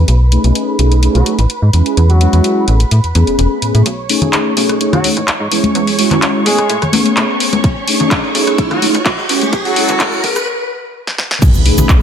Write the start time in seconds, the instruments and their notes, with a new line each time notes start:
Already playing: violin section B4 B5
0.08 fm bass B1, closed hi-hat
0.32 analog polysynth A3 C#4 D#4 G#4, closed hi-hat
0.44 fm bass B1, analog polysynth A3 C#4 D#4 G#4, closed hi-hat
0.55 closed hi-hat
0.79 fm bass B1, analog polysynth A3 C#4 D#4 G#4, closed hi-hat
0.92 closed hi-hat
1.02 analog polysynth A3 C#4 D#4 G#4, closed hi-hat
1.15 fm bass B1, horn section F#3 F#4, closed hi-hat
1.26 analog polysynth A3 C#4 D#4 G#4, closed hi-hat
1.39 fm bass A1, closed hi-hat
1.50 closed hi-hat
1.62 fm bass G#2
1.73 fm bass E2, analog polysynth G#3 C#4 E4 G#4, closed hi-hat
1.86 closed hi-hat
1.97 fm bass E2, closed hi-hat
2.09 horn section F#3 F#4, closed hi-hat
2.21 analog polysynth G#3 C#4 E4 F#4, closed hi-hat
2.33 fm bass E2, analog polysynth G#3 C#4 E4 F#4, closed hi-hat
2.44 closed hi-hat
2.68 fm bass A1, analog polysynth A3 B3 C#4 G#4, closed hi-hat
2.80 closed hi-hat
2.91 fm bass A2, closed hi-hat
3.04 fm bass E2, closed hi-hat
3.14 fm bass E2, analog polysynth A3 B3 C#4 G#4, closed hi-hat
3.27 fm bass E1, closed hi-hat
3.38 fm bass E1, closed hi-hat
3.62 fm bass A2, closed hi-hat
3.74 fm bass A2, closed hi-hat
3.86 fm bass B1, violin section C#5 C#6, closed hi-hat, riser
4.09 analog polysynth A3 C#4 D#4 G#4, open hi-hat
4.21 fm bass B1, analog polysynth A3 C#4 D#4 G#4, closed hi-hat, low conga, shaker
4.33 clap, closed hi-hat
4.56 fm bass B1, analog polysynth A3 C#4 D#4 G#4, open hi-hat
4.69 cross-stick, closed hi-hat
4.80 analog polysynth A3 C#4 D#4 G#4, closed hi-hat
4.93 fm bass B1, horn section F#3 F#4, cross-stick, closed hi-hat, low conga, shaker
5.04 analog polysynth A3 C#4 D#4 G#4, open hi-hat, high conga
5.16 fm bass A1, closed hi-hat, shaker
5.28 clap, closed hi-hat, shaker
5.40 fm bass G#2
5.51 fm bass E2, analog polysynth G#3 C#4 E4 G#4, open hi-hat
5.63 closed hi-hat, high conga, shaker
5.75 fm bass E2, closed hi-hat, shaker
5.87 open hi-hat, shaker
5.98 analog polysynth G#3 C#4 E4 F#4, open hi-hat
6.11 fm bass E2, analog polysynth G#3 C#4 E4 F#4, clap, closed hi-hat, low conga, shaker
6.22 clap, closed hi-hat
6.35 shaker
6.45 fm bass A1, horn section G#3 G#4, analog polysynth A3 B3 C#4 G#4, open hi-hat
6.58 cross-stick, closed hi-hat, shaker
6.69 fm bass A2, closed hi-hat, shaker
6.82 cross-stick, closed hi-hat, low conga, shaker
6.92 fm bass E2, analog polysynth A3 B3 C#4 G#4, open hi-hat, high conga
7.05 fm bass A2, closed hi-hat, shaker
7.17 fm bass A2, clap, closed hi-hat, shaker
7.30 shaker
7.40 fm bass E2, open hi-hat
7.53 fm bass E2, closed hi-hat, high conga, shaker
7.63 fm bass B1, kick, closed hi-hat, shaker
7.76 shaker
7.87 analog polysynth A3 C#4 D#4 G#4, open hi-hat
8.00 fm bass B1, analog polysynth A3 C#4 D#4 G#4, closed hi-hat, low conga, shaker
8.11 kick, clap, closed hi-hat, shaker
8.24 shaker
8.34 fm bass B1, analog polysynth A3 C#4 D#4 G#4, open hi-hat
8.47 cross-stick, closed hi-hat, shaker
8.58 analog polysynth A3 C#4 D#4 G#4, kick, closed hi-hat, shaker
8.70 fm bass B1, horn section F#3 F#4, cross-stick, closed hi-hat, low conga, shaker
8.81 analog polysynth A3 C#4 D#4 G#4, open hi-hat, high conga
8.94 fm bass A1, closed hi-hat, shaker
9.06 kick, clap, closed hi-hat, shaker
9.18 fm bass G#2, shaker
9.29 fm bass E2, analog polysynth G#3 C#4 E4 G#4, open hi-hat
9.41 closed hi-hat, high conga, shaker
9.53 fm bass E2, kick, closed hi-hat, shaker
9.65 horn section F#3 F#4, open hi-hat, shaker
9.76 analog polysynth G#3 C#4 E4 F#4, open hi-hat
9.88 fm bass E2, analog polysynth G#3 C#4 E4 F#4, clap, closed hi-hat, low conga, shaker
10.00 kick, clap, closed hi-hat, high conga, shaker
10.12 shaker
10.23 fm bass A1, analog polysynth A3 B3 C#4 G#4, kick, open hi-hat
10.35 cross-stick, closed hi-hat, shaker
11.07 snare
11.18 snare
11.31 snare
11.42 fm bass B1, violin section B4 B5, kick, closed hi-hat, crash, impact, shaker
11.54 shaker
11.65 analog polysynth A3 C#4 D#4 G#4, open hi-hat
11.78 fm bass B1, analog polysynth A3 C#4 D#4 G#4, closed hi-hat, low conga, shaker
11.89 kick, clap, closed hi-hat, shaker